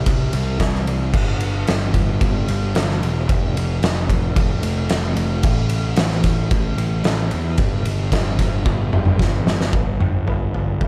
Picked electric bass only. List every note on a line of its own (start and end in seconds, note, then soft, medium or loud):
0.06 0.32 C2 loud
0.33 0.59 C2 medium
0.59 0.85 C2 medium
0.87 1.12 C2 medium
1.13 1.64 G1 medium
1.68 1.94 G1 medium
1.94 2.20 G1 medium
2.21 2.47 G1 medium
2.50 2.74 G1 medium
2.76 3.01 G1 medium
3.02 3.28 E1 medium
3.29 3.54 F1 medium
3.56 3.81 F1 medium
3.82 4.08 F1 loud
4.09 4.35 F1 medium
4.37 4.62 F1 loud
4.63 4.89 F1 medium
4.91 5.16 F1 medium
5.16 5.42 F1 medium
5.44 5.94 A1 medium
5.98 6.23 A1 loud
6.24 6.49 A1 medium
6.51 6.76 A1 medium
6.77 7.03 A1 medium
7.05 7.30 A1 loud
7.34 7.58 E2 medium
7.59 7.84 G1 medium
7.86 8.11 G1 medium
8.12 8.38 G1 loud
8.39 8.65 G1 medium
8.65 8.91 G1 medium
8.92 9.18 G1 medium
9.19 9.45 G1 medium
9.46 9.72 G1 medium
9.73 9.98 G1 medium
10.00 10.25 G1 medium
10.27 10.52 G1 medium
10.56 10.80 G1 medium
10.81 10.88 G1 medium